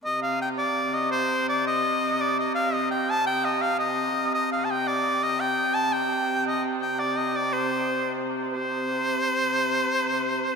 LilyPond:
<<
  \new Staff \with { instrumentName = "Shawm" } { \time 6/8 \key c \dorian \tempo 4. = 113 ees''8 f''8 g''8 d''4 ees''8 | c''4 d''8 ees''4. | d''8 ees''8 f''8 ees''8 g''8 a''8 | g''8 ees''8 f''8 ees''4. |
ees''8 f''16. a''32 g''8 d''4 ees''8 | g''4 a''8 g''4. | ees''8 r8 g''8 d''8 ees''8 d''8 | c''2 r4 |
c''2.~ | c''2. | }
  \new Staff \with { instrumentName = "Hurdy-gurdy" } { \clef bass \time 6/8 \key c \dorian c2.~ | c2.~ | c2.~ | c2. |
c2.~ | c2.~ | c2.~ | c2. |
c2.~ | c2. | }
>>